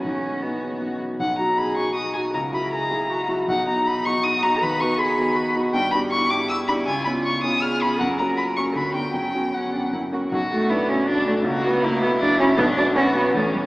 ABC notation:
X:1
M:3/4
L:1/8
Q:1/4=159
K:B
V:1 name="Violin"
F4- F z | f a b c' d' g | a b a3 z | f a b c' d' a |
b c' b3 z | [K:Bm] g b c' d' e' b | ^g b c' ^d' ^e' b | f ^a b c' b g |
g2 f2 z2 | F2 E2 D2 | F2 E4 | D2 F2 C2 |]
V:2 name="Cello"
C2 B,2 z2 | z2 G2 F2 | A2 G2 F2 | D4 F2 |
B2 G2 F2- | [K:Bm] F2 E4 | ^E4 ^G2 | ^A4 F2 |
C2 C D E F | F, A, B, C D A, | ^A, B, A, B, D C | B, D C B, A, G, |]
V:3 name="Grand piano"
B,,,2 [F,B,D]2 [F,B,D]2 | B,,, [F,DF]2 [F,DF]2 [F,DF] | C,, [F,EF]2 [F,EF]2 [F,EF] | B,,, [B,DF]2 [B,DF]2 [B,DF] |
D,, [B,DF]2 [B,DF]2 [B,DF] | [K:Bm] G,, [B,DG]2 [B,DG]2 [B,DG] | C,, [B,C^E]2 [B,CE]2 [B,CE] | F,, [^A,CF]2 [A,CF] D,, [B,DF] |
F,, [B,CF]2 [B,CF] F,, [^A,CF] | B,,, F D F F, F | C,, F E F F, F | B,,, F B F E,, [Cc] |]